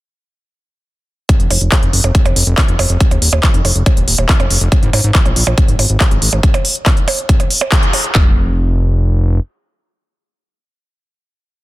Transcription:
1.29 kick loud
1.29 closed hi-hat medium
1.40 1.47 F1 medium
1.40 closed hi-hat soft
1.50 1.58 F1 loud
1.50 open hi-hat loud
1.50 percussion blips soft
1.61 1.68 F1 medium
1.61 closed hi-hat soft
1.72 kick loud
1.72 clap loud
1.72 closed hi-hat medium
1.72 percussion blips medium
1.83 1.90 F1 medium
1.83 closed hi-hat soft
1.93 2.01 F1 loud
1.93 open hi-hat loud
2.04 2.11 F1 medium
2.04 closed hi-hat soft
2.04 percussion blips soft
2.15 kick loud
2.15 closed hi-hat medium
2.25 2.33 F1 medium
2.25 closed hi-hat soft
2.25 percussion blips medium
2.36 2.43 F1 loud
2.36 open hi-hat loud
2.47 2.54 F1 medium
2.47 closed hi-hat soft
2.58 kick loud
2.58 clap loud
2.58 closed hi-hat medium
2.58 percussion blips soft
2.68 2.76 F1 medium
2.68 closed hi-hat soft
2.79 2.86 F1 loud
2.79 open hi-hat loud
2.79 percussion blips medium
2.90 2.97 F1 loud
2.90 closed hi-hat soft
3.01 kick loud
3.01 closed hi-hat medium
3.11 3.18 D#1 medium
3.11 closed hi-hat soft
3.11 percussion blips soft
3.22 3.29 D#1 loud
3.22 open hi-hat loud
3.33 3.40 D#1 medium
3.33 closed hi-hat soft
3.33 percussion blips medium
3.43 kick loud
3.43 clap loud
3.43 closed hi-hat medium
3.54 3.61 F1 medium
3.54 closed hi-hat soft
3.65 3.72 F1 loud
3.65 open hi-hat loud
3.65 percussion blips soft
3.76 3.83 F1 medium
3.76 closed hi-hat soft
3.86 kick loud
3.86 closed hi-hat medium
3.86 percussion blips medium
3.97 4.04 D#1 medium
3.97 closed hi-hat soft
4.08 4.15 D#1 loud
4.08 open hi-hat loud
4.18 4.26 D#1 loud
4.18 closed hi-hat soft
4.18 percussion blips soft
4.29 kick loud
4.29 clap loud
4.29 closed hi-hat medium
4.40 4.47 F1 medium
4.40 closed hi-hat soft
4.40 percussion blips medium
4.50 4.58 F1 loud
4.50 open hi-hat loud
4.61 4.68 F1 medium
4.61 closed hi-hat soft
4.72 kick loud
4.72 closed hi-hat medium
4.72 percussion blips soft
4.83 4.90 G#1 medium
4.83 closed hi-hat soft
4.93 5.01 G#1 loud
4.93 open hi-hat loud
4.93 percussion blips medium
5.04 5.11 G#1 medium
5.04 closed hi-hat soft
5.15 kick loud
5.15 clap loud
5.15 closed hi-hat medium
5.26 5.33 A#1 medium
5.26 closed hi-hat soft
5.26 percussion blips soft
5.36 5.43 A#1 loud
5.36 open hi-hat loud
5.47 5.54 A#1 medium
5.47 percussion blips medium
5.58 kick loud
5.58 closed hi-hat medium
5.68 5.76 G#1 medium
5.68 closed hi-hat soft
5.79 5.86 G#1 loud
5.79 open hi-hat loud
5.79 percussion blips soft
5.90 5.97 G#1 loud
5.90 closed hi-hat soft
6.00 kick loud
6.00 clap loud
6.00 closed hi-hat medium
6.00 percussion blips medium
6.11 6.18 G#1 medium
6.11 closed hi-hat soft
6.22 6.29 G#1 loud
6.22 open hi-hat loud
6.33 6.40 G#1 medium
6.33 closed hi-hat soft
6.33 percussion blips soft
6.43 kick loud
6.43 closed hi-hat medium
6.54 closed hi-hat soft
6.54 percussion blips medium
6.65 open hi-hat loud
6.76 closed hi-hat soft
6.86 kick loud
6.86 clap loud
6.86 closed hi-hat medium
6.86 percussion blips soft
6.97 closed hi-hat soft
7.08 open hi-hat loud
7.08 percussion blips medium
7.18 closed hi-hat soft
7.29 kick loud
7.29 closed hi-hat medium
7.40 closed hi-hat soft
7.40 percussion blips soft
7.51 open hi-hat loud
7.61 percussion blips medium
7.72 kick loud
7.72 clap loud
7.72 closed hi-hat medium
7.83 closed hi-hat soft
7.93 open hi-hat loud
7.93 percussion blips soft
8.04 closed hi-hat soft
8.15 9.39 F1 loud
8.15 kick loud
8.15 clap medium

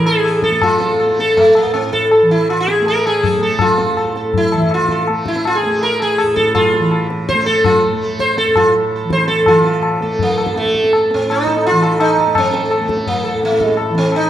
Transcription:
0.00 1.65 A2 medium
0.00 2.22 E3 medium
0.00 0.51 A3 medium
0.06 0.40 G#4 medium
0.06 tabla na medium
0.24 0.41 A4 soft
0.24 tabla na medium
0.43 0.62 A4 medium
0.43 tabla ke medium
0.51 1.06 A3 medium
0.62 1.20 F4 medium
0.62 tabla na loud
0.62 tabla ge medium
0.81 0.98 A4 soft
0.81 tabla te medium
1.00 1.17 A4 soft
1.00 tabla na medium
1.06 2.81 A3 medium
1.19 1.38 A4 medium
1.19 tabla te medium
1.37 1.56 A3 medium
1.37 tabla tin medium
1.37 tabla ge medium
1.55 1.73 A#3 medium
1.55 tabla na medium
1.65 3.95 A2 medium
1.74 1.93 C4 medium
1.74 tabla na medium
1.93 2.10 A4 medium
1.93 tabla ke medium
2.11 2.28 A4 soft
2.11 tabla na medium
2.22 4.52 E3 medium
2.31 2.49 E4 medium
2.31 tabla te medium
2.49 2.59 F4 medium
2.49 tabla na medium
2.60 2.88 G#4 medium
2.68 tabla te medium
2.81 3.38 A3 medium
2.86 3.06 A#4 medium
2.86 tabla tin medium
3.06 3.42 G#4 medium
3.06 tabla na medium
3.23 3.40 A4 soft
3.23 tabla na medium
3.23 tabla ge medium
3.38 5.09 A3 medium
3.38 tabla te medium
3.43 3.61 A4 medium
3.59 4.12 F4 medium
3.59 tabla na medium
3.59 tabla ge medium
3.78 3.96 A4 soft
3.78 tabla te medium
3.95 6.23 A2 soft
3.95 4.15 A4 soft
3.95 tabla na medium
4.16 4.33 A4 soft
4.16 tabla te medium
4.34 4.74 E4 medium
4.34 tabla tin medium
4.34 tabla ge medium
4.52 6.78 E3 medium
4.52 4.70 A4 soft
4.52 tabla na medium
4.62 tabla ke medium
4.71 5.07 F4 medium
4.71 tabla na medium
4.89 5.08 A4 soft
4.89 tabla ke soft
5.07 5.66 A3 medium
5.07 tabla na medium
5.26 5.46 E4 medium
5.26 tabla ke medium
5.36 tabla te medium
5.45 5.55 F4 medium
5.45 tabla na medium
5.55 5.82 G#4 medium
5.63 7.35 A3 medium
5.63 tabla te medium
5.82 6.01 A#4 medium
5.82 tabla tin medium
6.00 6.35 G#4 medium
6.00 tabla na medium
6.18 6.35 A4 soft
6.18 tabla na medium
6.23 8.47 A2 medium
6.36 6.54 A4 medium
6.36 tabla ke medium
6.55 7.06 F4 medium
6.55 tabla na loud
6.55 tabla ge medium
6.73 tabla te medium
6.78 9.04 E3 medium
6.91 tabla na medium
7.10 tabla te medium
7.29 7.46 C5 loud
7.29 tabla ke medium
7.35 7.93 A3 medium
7.46 7.63 A4 medium
7.46 tabla te medium
7.64 7.82 F4 medium
7.64 tabla na medium
7.64 tabla ge medium
7.83 8.00 A4 soft
7.93 10.02 A3 medium
8.04 8.20 A4 soft
8.19 8.37 C5 medium
8.19 tabla ke medium
8.37 8.57 A4 medium
8.37 tabla te medium
8.47 11.13 A2 medium
8.56 8.74 F4 medium
8.56 tabla na medium
8.56 tabla ge medium
8.96 9.11 A4 soft
9.04 9.47 E3 medium
9.10 9.27 C5 medium
9.10 tabla ke medium
9.28 9.46 A4 medium
9.28 tabla te medium
9.46 11.71 E3 medium
9.46 9.98 F4 medium
9.46 9.64 A4 soft
9.46 tabla na medium
9.46 tabla ge medium
9.64 9.82 A4 soft
9.64 tabla te medium
9.83 tabla na medium
10.01 10.58 A3 medium
10.01 10.19 A4 soft
10.01 tabla te medium
10.19 10.58 A#3 medium
10.19 tabla tin medium
10.19 tabla ge medium
10.38 10.55 A4 soft
10.38 tabla na medium
10.46 tabla ke medium
10.56 10.90 A3 medium
10.56 12.27 A3 medium
10.56 tabla te medium
10.66 tabla te medium
10.74 10.91 A4 soft
10.74 tabla ke medium
10.84 tabla te medium
10.93 11.10 A4 soft
10.93 tabla na medium
11.11 13.34 A2 medium
11.11 11.31 C4 medium
11.11 tabla te medium
11.30 11.66 D#4 medium
11.30 tabla na medium
11.47 11.64 A4 soft
11.47 tabla ke medium
11.57 tabla te medium
11.65 11.99 F4 loud
11.65 tabla tin medium
11.71 13.89 E3 medium
11.82 11.99 A4 soft
11.82 tabla na medium
12.00 12.37 D#4 loud
12.00 tabla na medium
12.18 12.35 A4 soft
12.18 tabla ke soft
12.27 12.81 A3 soft
12.35 12.87 C4 medium
12.35 tabla na loud
12.35 tabla ge medium
12.53 12.69 A4 soft
12.53 tabla te medium
12.70 12.87 A4 soft
12.70 tabla na medium
12.81 14.30 A3 medium
12.88 13.05 A4 soft
12.88 tabla ke medium
12.97 tabla te medium
13.07 13.44 A#3 medium
13.07 tabla tin medium
13.07 tabla ge medium
13.24 13.41 A4 soft
13.24 tabla na medium
13.34 14.30 A2 medium
13.43 13.64 A3 medium
13.43 tabla te medium
13.52 tabla te medium
13.59 13.76 A4 soft
13.59 tabla ke medium
13.64 13.77 G#3 medium
13.68 tabla te medium
13.77 13.95 A4 soft
13.77 tabla na medium
13.90 14.30 E3 medium
13.95 14.15 C4 medium
13.95 tabla te medium
14.12 14.30 D#4 medium
14.12 tabla na medium

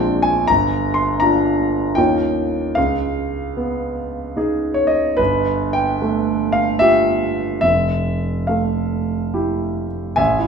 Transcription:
0.00 0.47 A#1 soft
0.00 0.45 G#3 soft
0.00 0.45 C4 soft
0.00 0.45 D4 soft
0.00 0.46 F4 soft
0.00 0.24 G5 medium
0.22 0.48 G#5 medium
0.48 1.94 G1 medium
0.48 0.97 A#5 medium
0.94 1.20 C6 medium
1.20 1.94 D4 soft
1.20 1.94 F4 soft
1.20 1.97 A#5 medium
1.95 2.74 D#2 soft
1.95 2.73 A#3 soft
1.95 2.73 C#4 soft
1.95 2.73 D#4 soft
1.95 2.73 F4 soft
1.95 2.75 G5 medium
2.75 5.15 C#2 soft
2.75 4.36 F5 medium
3.57 4.85 B3 soft
4.36 5.15 D#4 soft
4.36 5.15 G#4 soft
4.74 4.89 C#5 medium
4.87 5.17 D#5 medium
5.17 7.59 G1 soft
5.17 5.75 B4 medium
5.73 6.54 G5 medium
6.02 7.29 A3 soft
6.52 6.80 F5 medium
6.79 7.59 F4 soft
6.79 7.59 G4 soft
6.79 7.59 E5 medium
7.61 10.15 F1 soft
7.61 8.48 E5 medium
8.47 9.86 A3 soft
8.47 9.34 F5 soft
9.34 10.14 E4 soft
9.34 10.14 G4 soft
10.16 10.47 A1 medium
10.16 10.47 E5 medium
10.16 10.47 G#5 medium
10.39 10.47 E4 soft

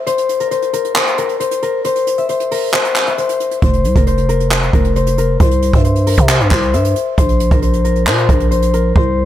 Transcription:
0.00 0.40 A#4 medium
0.00 1.35 E5 medium
0.06 0.51 C5 loud
0.06 closed hi-hat medium
0.18 closed hi-hat medium
0.29 closed hi-hat medium
0.40 0.73 A#4 medium
0.40 closed hi-hat medium
0.51 0.96 C5 medium
0.51 closed hi-hat medium
0.62 closed hi-hat medium
0.73 1.18 A#4 medium
0.73 closed hi-hat medium
0.85 closed hi-hat soft
0.96 1.39 C5 medium
0.96 clap loud
0.96 closed hi-hat medium
1.07 closed hi-hat medium
1.18 1.62 A#4 medium
1.18 closed hi-hat medium
1.29 closed hi-hat medium
1.40 1.84 C5 medium
1.40 closed hi-hat medium
1.51 closed hi-hat medium
1.62 2.51 A#4 medium
1.62 closed hi-hat medium
1.85 2.29 C5 loud
1.85 closed hi-hat medium
1.96 closed hi-hat medium
2.07 closed hi-hat medium
2.18 3.07 E5 medium
2.18 closed hi-hat medium
2.29 2.73 C5 medium
2.29 closed hi-hat medium
2.40 closed hi-hat medium
2.51 3.95 A#4 medium
2.51 open hi-hat medium
2.73 3.17 C5 medium
2.73 clap loud
2.73 closed hi-hat medium
2.85 closed hi-hat medium
2.96 clap medium
2.96 closed hi-hat medium
3.07 4.80 E5 medium
3.07 closed hi-hat medium
3.18 3.62 C5 medium
3.18 closed hi-hat medium
3.29 closed hi-hat medium
3.40 closed hi-hat medium
3.51 closed hi-hat medium
3.62 3.86 F1 loud
3.62 4.06 C5 loud
3.62 kick loud
3.62 closed hi-hat medium
3.73 closed hi-hat medium
3.85 3.95 C2 loud
3.85 closed hi-hat medium
3.96 4.70 F1 loud
3.96 4.28 A#4 medium
3.96 kick loud
3.96 closed hi-hat medium
4.07 4.51 C5 medium
4.07 closed hi-hat medium
4.18 closed hi-hat medium
4.29 4.73 A#4 medium
4.29 closed hi-hat medium
4.40 closed hi-hat soft
4.51 4.95 C5 medium
4.51 clap loud
4.51 closed hi-hat medium
4.62 closed hi-hat medium
4.73 5.37 F1 loud
4.73 5.18 A#4 medium
4.73 kick loud
4.73 closed hi-hat medium
4.84 closed hi-hat medium
4.96 5.40 C5 medium
4.96 closed hi-hat medium
5.07 closed hi-hat medium
5.18 6.06 A#4 medium
5.18 closed hi-hat medium
5.40 5.72 C2 loud
5.40 5.84 C5 loud
5.40 kick loud
5.40 closed hi-hat medium
5.51 closed hi-hat medium
5.62 closed hi-hat medium
5.73 6.16 G2 loud
5.73 6.73 E5 medium
5.73 kick loud
5.73 closed hi-hat medium
5.84 6.29 C5 medium
5.84 closed hi-hat medium
5.96 closed hi-hat medium
6.07 7.51 A#4 medium
6.07 closed hi-hat medium
6.07 open hi-hat medium
6.18 6.42 C3 loud
6.18 kick medium
6.18 closed hi-hat soft
6.29 6.51 C5 medium
6.29 clap loud
6.29 closed hi-hat medium
6.40 6.51 G2 loud
6.40 closed hi-hat medium
6.51 6.75 C2 loud
6.51 7.17 C5 medium
6.51 kick loud
6.51 clap medium
6.51 closed hi-hat medium
6.62 closed hi-hat medium
6.73 6.95 G2 loud
6.73 8.46 E5 medium
6.73 closed hi-hat medium
6.85 closed hi-hat medium
6.96 closed hi-hat medium
7.18 7.50 A#1 loud
7.18 7.62 C5 loud
7.18 kick loud
7.18 closed hi-hat medium
7.29 closed hi-hat medium
7.40 closed hi-hat medium
7.51 8.08 A#1 loud
7.51 7.84 A#4 medium
7.51 kick loud
7.51 closed hi-hat medium
7.62 8.07 C5 medium
7.62 closed hi-hat medium
7.73 closed hi-hat medium
7.84 8.29 A#4 medium
7.84 closed hi-hat medium
7.96 closed hi-hat soft
8.07 8.28 A#2 loud
8.07 8.50 C5 medium
8.07 clap loud
8.07 closed hi-hat medium
8.18 closed hi-hat medium
8.29 8.93 A#1 loud
8.29 8.73 A#4 medium
8.29 kick loud
8.29 closed hi-hat medium
8.40 closed hi-hat medium
8.51 8.95 C5 medium
8.51 closed hi-hat medium
8.62 closed hi-hat medium
8.73 9.25 A#4 medium
8.73 closed hi-hat medium
8.96 9.25 C2 loud
8.96 9.25 C5 loud
8.96 kick loud

